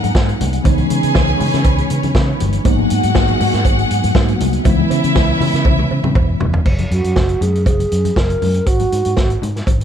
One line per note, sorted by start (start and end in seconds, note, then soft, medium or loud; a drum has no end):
0.00 0.12 G#2 medium
0.00 0.63 B2 medium
0.00 0.60 F#3 medium
0.00 0.61 A#3 medium
0.00 0.61 B3 medium
0.00 0.62 D#4 medium
0.00 0.63 G#4 medium
0.00 0.36 A#4 loud
0.00 0.63 F#5 loud
0.00 0.36 A#5 loud
0.00 closed hi-hat soft
0.00 high conga medium
0.15 0.33 G#2 medium
0.15 kick loud
0.15 snare loud
0.15 cowbell medium
0.15 muted conga soft
0.28 closed hi-hat soft
0.28 muted conga soft
0.41 0.58 C2 loud
0.41 closed hi-hat medium
0.41 high conga medium
0.41 low conga medium
0.53 closed hi-hat soft
0.63 0.83 C#2 loud
0.63 0.71 D#3 medium
0.63 2.61 G#3 medium
0.63 2.61 B3 medium
0.63 2.63 C#4 medium
0.63 2.62 D#4 medium
0.63 2.37 G#4 loud
0.63 2.63 B4 medium
0.63 2.63 C#5 medium
0.63 2.36 G#5 loud
0.63 kick loud
0.63 closed hi-hat medium
0.63 cowbell medium
0.63 low conga medium
0.69 2.63 E3 medium
0.78 closed hi-hat soft
0.78 high conga medium
0.90 1.00 C#3 medium
0.90 closed hi-hat medium
1.03 1.12 C#3 medium
1.03 closed hi-hat soft
1.15 1.33 C#2 loud
1.15 kick loud
1.15 snare medium
1.15 cowbell medium
1.15 high conga medium
1.28 closed hi-hat soft
1.40 1.50 C#3 medium
1.40 open hi-hat medium
1.40 low conga medium
1.53 1.62 C#3 loud
1.53 snare soft
1.53 closed hi-hat soft
1.64 1.82 C#2 medium
1.64 kick loud
1.64 closed hi-hat medium
1.64 cowbell medium
1.78 closed hi-hat soft
1.78 muted conga soft
1.90 2.00 C#3 medium
1.90 closed hi-hat medium
2.03 2.12 C#3 medium
2.03 closed hi-hat soft
2.03 high conga medium
2.15 2.32 C#3 loud
2.15 kick loud
2.15 snare loud
2.15 cowbell medium
2.40 2.58 G1 medium
2.40 closed hi-hat medium
2.40 high conga medium
2.40 low conga medium
2.53 closed hi-hat soft
2.64 2.83 G#1 loud
2.64 4.64 B2 medium
2.64 4.11 F#3 medium
2.64 4.12 A#3 medium
2.64 4.13 B3 medium
2.64 4.13 D#4 medium
2.64 4.37 F#4 loud
2.64 4.63 G#4 medium
2.64 4.37 F#5 loud
2.64 4.63 F#5 loud
2.64 kick loud
2.64 closed hi-hat medium
2.64 cowbell medium
2.64 low conga medium
2.79 high conga medium
2.90 3.00 G#2 loud
2.90 closed hi-hat medium
3.03 3.12 G#2 loud
3.03 closed hi-hat medium
3.15 3.33 G#1 loud
3.15 kick loud
3.15 snare loud
3.15 cowbell medium
3.15 muted conga soft
3.15 high conga medium
3.28 closed hi-hat soft
3.28 muted conga soft
3.40 3.50 G#2 medium
3.40 open hi-hat medium
3.40 low conga medium
3.53 3.62 G#2 medium
3.53 snare soft
3.53 closed hi-hat soft
3.65 3.83 G#1 medium
3.65 kick loud
3.65 closed hi-hat medium
3.65 cowbell medium
3.79 closed hi-hat soft
3.91 4.00 G#2 medium
3.91 closed hi-hat medium
4.04 4.12 G#2 medium
4.04 closed hi-hat soft
4.04 high conga medium
4.15 4.32 G#2 loud
4.15 4.65 F#3 medium
4.15 4.66 A#3 medium
4.15 4.65 B3 medium
4.15 4.66 F#4 medium
4.15 kick loud
4.15 snare loud
4.15 cowbell medium
4.15 muted conga soft
4.28 closed hi-hat soft
4.28 muted conga soft
4.40 4.58 C2 medium
4.40 closed hi-hat medium
4.40 high conga medium
4.40 low conga medium
4.53 closed hi-hat soft
4.64 4.83 C#2 loud
4.64 6.61 E3 medium
4.64 6.62 G#3 medium
4.64 6.62 B3 medium
4.64 6.64 C#4 medium
4.64 6.37 E4 loud
4.64 6.63 E4 medium
4.64 6.64 B4 medium
4.64 6.37 E5 loud
4.64 6.64 E5 medium
4.64 kick loud
4.64 closed hi-hat medium
4.64 cowbell medium
4.64 muted conga soft
4.64 low conga medium
4.79 muted conga soft
4.79 high conga medium
4.90 5.00 C#3 medium
4.90 closed hi-hat medium
4.90 cowbell medium
5.04 5.12 C#3 loud
5.04 closed hi-hat medium
5.15 5.33 C#2 loud
5.15 kick loud
5.15 snare loud
5.15 cowbell medium
5.15 muted conga soft
5.15 high conga medium
5.40 5.50 C#3 medium
5.40 open hi-hat medium
5.40 low conga medium
5.54 5.62 C#3 medium
5.54 snare soft
5.54 closed hi-hat soft
5.65 5.83 C#2 medium
5.65 kick loud
5.65 high tom medium
5.65 cowbell medium
5.65 muted conga soft
5.65 high conga medium
5.79 high tom medium
5.79 muted conga soft
5.91 6.00 C#3 medium
5.91 cowbell medium
6.04 6.12 C#3 medium
6.04 mid tom medium
6.04 high conga medium
6.15 6.33 E1 medium
6.15 kick loud
6.15 mid tom medium
6.15 cowbell medium
6.15 muted conga soft
6.40 6.58 F1 loud
6.40 floor tom loud
6.40 high conga medium
6.40 low conga medium
6.54 floor tom loud
6.66 6.83 F#1 medium
6.66 kick medium
6.66 crash medium
6.66 cowbell medium
6.78 closed hi-hat soft
6.78 high conga medium
6.91 7.00 F#2 loud
6.91 7.43 F#4 medium
6.91 closed hi-hat medium
7.04 7.12 F#2 medium
7.04 closed hi-hat soft
7.16 7.34 F#1 medium
7.16 kick loud
7.16 snare medium
7.16 cowbell medium
7.16 muted conga soft
7.16 high conga medium
7.29 closed hi-hat soft
7.41 7.68 F#2 medium
7.41 7.66 G#4 medium
7.41 closed hi-hat medium
7.41 low conga medium
7.55 closed hi-hat soft
7.66 7.84 F#1 medium
7.66 8.18 G#4 medium
7.66 kick loud
7.66 closed hi-hat medium
7.66 cowbell medium
7.66 muted conga soft
7.66 high conga medium
7.80 closed hi-hat soft
7.80 muted conga soft
7.92 8.09 F#2 medium
7.92 closed hi-hat medium
8.04 closed hi-hat soft
8.04 high conga medium
8.16 8.34 F#1 medium
8.16 8.68 A#4 medium
8.16 kick medium
8.16 snare loud
8.16 cowbell medium
8.16 muted conga soft
8.30 closed hi-hat soft
8.30 muted conga soft
8.42 8.59 F#2 loud
8.42 open hi-hat medium
8.42 high conga medium
8.42 low conga medium
8.54 closed hi-hat soft
8.66 8.84 G#1 medium
8.66 9.42 F#4 loud
8.66 kick medium
8.66 closed hi-hat medium
8.66 cowbell medium
8.79 closed hi-hat soft
8.79 high conga medium
8.92 9.01 G#2 medium
8.92 closed hi-hat medium
9.05 9.14 G#2 medium
9.05 closed hi-hat soft
9.16 9.35 G#1 medium
9.16 kick loud
9.16 snare medium
9.16 cowbell medium
9.16 muted conga soft
9.16 high conga medium
9.30 closed hi-hat soft
9.42 9.60 G#2 medium
9.42 closed hi-hat medium
9.42 low conga medium
9.56 snare soft
9.56 closed hi-hat soft
9.67 9.84 G#1 medium
9.67 kick loud
9.67 closed hi-hat medium
9.67 cowbell medium
9.67 muted conga soft
9.67 high conga medium
9.81 closed hi-hat soft
9.81 muted conga soft